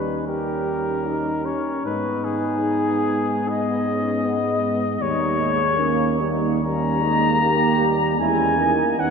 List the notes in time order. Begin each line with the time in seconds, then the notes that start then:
Already playing: D#2 G3 C#4 D#4 B4
0.27 G4 A#4
1.06 D#4
1.45 C#4 C#5
1.85 G#2 G#3 B3 D#4 B4
2.24 G#4
3.48 B3 D#5
3.89 C#4
4.26 B3
5.01 D#2 G3 A#3 D#4 C#5
5.39 G#3
5.77 A#3 C#4
6.19 G3 D#4
6.61 G3 A#3 C#4 A#5
7.01 G#3 D#4
7.39 A#3 G4
7.78 G3
8.17 E2 G#3 C#4 E4 G#5
8.58 A#3 D#4
8.97 D#2 B3 C#4 D#4 F#5